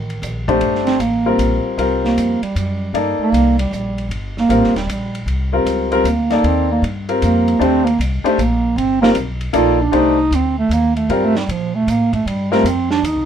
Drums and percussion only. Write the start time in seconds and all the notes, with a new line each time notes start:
0.10 ride
0.23 hi-hat pedal, ride
0.48 kick, ride
0.61 ride
0.75 snare
0.87 snare, ride
1.00 hi-hat pedal, ride
1.39 hi-hat pedal, ride
1.79 ride
2.05 snare
2.18 hi-hat pedal, ride
2.43 ride
2.56 hi-hat pedal, ride
2.95 ride
3.34 hi-hat pedal, ride
3.59 ride
3.72 hi-hat pedal
3.98 ride
4.11 ride
4.37 snare
4.50 hi-hat pedal, ride
4.64 snare
4.76 snare, ride
4.89 hi-hat pedal, ride
5.15 ride
5.28 ride
5.66 hi-hat pedal, ride
5.92 ride
6.05 hi-hat pedal, ride
6.30 snare, ride
6.44 ride
6.84 ride
7.09 ride
7.22 hi-hat pedal, ride
7.48 ride
7.61 ride
7.87 ride
8.01 hi-hat pedal, ride
8.26 ride
8.39 hi-hat pedal, ride
8.78 ride
9.03 snare
9.15 hi-hat pedal, ride
9.41 ride
9.53 hi-hat pedal, ride
9.93 ride
10.32 hi-hat pedal, ride
10.71 hi-hat pedal, ride
10.96 ride
11.10 ride
11.35 snare
11.49 ride
11.88 hi-hat pedal, ride
12.13 kick, ride
12.27 ride
12.52 snare
12.66 hi-hat pedal, ride
12.91 snare
13.04 hi-hat pedal, ride